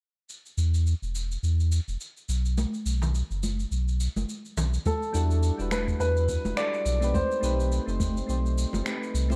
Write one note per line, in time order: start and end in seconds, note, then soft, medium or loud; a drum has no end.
0.30 cabasa soft
0.46 cabasa soft
0.57 0.94 E2 medium
0.57 cabasa medium
0.74 cabasa soft
0.87 cabasa soft
1.02 1.37 E1 medium
1.02 cabasa soft
1.15 cabasa medium
1.32 cabasa soft
1.43 1.80 E2 medium
1.43 cabasa soft
1.60 cabasa soft
1.72 cabasa medium
1.88 1.96 E1 medium
1.88 cabasa soft
2.01 cabasa soft
2.17 cabasa soft
2.29 2.66 B1 medium
2.29 cabasa medium
2.46 cabasa soft
2.58 high conga medium
2.58 cabasa soft
2.74 cabasa soft
2.86 3.23 B1 medium
2.86 cabasa medium
3.02 low conga medium
3.02 cabasa soft
3.15 cabasa soft
3.31 3.66 F#1 medium
3.31 cabasa soft
3.43 high conga medium
3.43 cabasa medium
3.60 cabasa soft
3.71 4.08 B1 medium
3.71 cabasa soft
3.88 cabasa soft
4.01 cabasa medium
4.16 4.25 F#1 medium
4.16 high conga medium
4.16 cabasa soft
4.29 cabasa soft
4.45 cabasa soft
4.57 4.78 B1 medium
4.57 low conga medium
4.57 cabasa medium
4.74 cabasa soft
4.86 5.75 A4 medium
4.86 kick loud
4.86 high conga medium
4.86 cabasa soft
5.03 cabasa soft
5.13 5.51 E2 medium
5.13 5.54 G3 medium
5.13 5.55 D4 medium
5.13 5.55 E4 medium
5.13 5.56 F#4 medium
5.13 5.56 A4 loud
5.13 cabasa medium
5.31 cabasa soft
5.43 cabasa soft
5.58 5.94 E1 medium
5.58 5.96 G3 medium
5.58 5.97 D4 medium
5.58 5.97 E4 medium
5.58 5.98 F#4 medium
5.58 5.98 B4 medium
5.58 cabasa soft
5.71 5.78 B4 medium
5.71 finger snap medium
5.71 high conga medium
5.71 cabasa medium
5.88 kick medium
5.88 cabasa soft
5.98 6.37 E2 medium
5.98 6.53 G3 medium
5.98 6.54 D4 medium
5.98 6.54 E4 medium
5.98 6.55 F#4 medium
5.98 6.59 B4 medium
5.98 6.55 B4 medium
5.98 cabasa soft
6.17 cabasa soft
6.29 kick loud
6.29 cabasa medium
6.45 6.53 E1 medium
6.45 high conga medium
6.45 cabasa soft
6.56 6.97 G3 medium
6.56 6.98 D4 medium
6.56 6.98 E4 medium
6.56 6.99 F#4 medium
6.56 6.99 A4 medium
6.56 7.16 D5 loud
6.56 finger snap medium
6.56 cabasa soft
6.74 cabasa soft
6.86 7.23 B1 medium
6.86 cabasa medium
7.00 7.39 A3 medium
7.00 7.40 C4 medium
7.00 7.40 D#4 medium
7.00 7.41 G4 medium
7.00 7.41 B4 medium
7.00 cabasa soft
7.14 7.67 C5 medium
7.14 kick loud
7.14 high conga medium
7.14 cabasa soft
7.31 cabasa soft
7.41 7.80 B1 medium
7.41 7.83 A3 medium
7.41 7.83 C4 medium
7.41 7.84 D#4 medium
7.41 7.84 G4 medium
7.41 7.85 B4 loud
7.41 cabasa medium
7.60 cabasa soft
7.72 cabasa soft
7.86 8.23 F#1 medium
7.86 8.25 A3 medium
7.86 8.25 C4 medium
7.86 8.26 D#4 medium
7.86 8.26 G4 medium
7.86 8.27 C5 medium
7.86 cabasa soft
8.00 kick loud
8.00 high conga medium
8.00 cabasa medium
8.17 cabasa soft
8.27 8.66 B1 medium
8.27 8.82 A3 medium
8.27 8.82 C4 medium
8.27 8.83 D#4 medium
8.27 8.83 G4 medium
8.27 8.84 C5 medium
8.27 cabasa soft
8.46 cabasa soft
8.58 cabasa medium
8.73 8.82 F#1 medium
8.73 muted conga soft
8.73 high conga medium
8.73 cabasa soft
8.84 9.26 A3 medium
8.84 9.26 C4 medium
8.84 9.27 D#4 medium
8.84 9.27 G4 medium
8.84 9.28 B4 medium
8.84 finger snap medium
8.84 cabasa soft
9.03 cabasa soft
9.14 9.36 C2 medium
9.14 cabasa medium
9.29 9.36 A3 medium
9.29 9.36 C4 medium
9.29 9.36 E4 medium
9.29 9.36 G4 medium
9.29 9.36 C5 medium
9.29 muted conga medium
9.29 cabasa soft